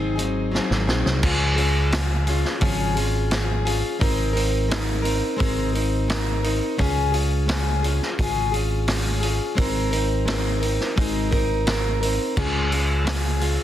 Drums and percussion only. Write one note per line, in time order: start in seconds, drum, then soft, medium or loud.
0.19 closed hi-hat medium
0.55 snare medium
0.71 snare medium
0.89 snare medium
1.06 snare medium
1.23 kick loud
1.23 crash loud
1.58 open hi-hat medium
1.92 snare loud
1.92 open hi-hat loud
2.27 open hi-hat medium
2.45 snare soft
2.61 kick loud
2.61 open hi-hat medium
2.97 open hi-hat medium
3.31 snare loud
3.31 open hi-hat medium
3.67 open hi-hat medium
4.01 kick loud
4.01 open hi-hat medium
4.37 open hi-hat medium
4.71 snare loud
4.71 open hi-hat medium
5.05 open hi-hat medium
5.40 kick loud
5.40 open hi-hat medium
5.75 open hi-hat medium
6.10 snare loud
6.10 open hi-hat medium
6.44 open hi-hat medium
6.79 kick loud
6.79 open hi-hat medium
7.14 open hi-hat medium
7.49 snare loud
7.49 open hi-hat medium
7.84 open hi-hat medium
8.02 snare soft
8.19 kick loud
8.19 open hi-hat loud
8.54 open hi-hat medium
8.88 snare loud
8.88 open hi-hat medium
9.23 open hi-hat medium
9.58 kick loud
9.58 open hi-hat medium
9.93 open hi-hat medium
10.28 snare loud
10.28 open hi-hat medium
10.62 open hi-hat medium
10.81 snare soft
10.97 kick loud
10.97 open hi-hat medium
11.32 kick medium
11.32 open hi-hat medium
11.67 snare loud
11.67 open hi-hat medium
12.03 open hi-hat medium
12.37 kick loud
12.37 crash loud
12.72 open hi-hat medium
13.07 snare loud
13.07 open hi-hat loud
13.41 open hi-hat medium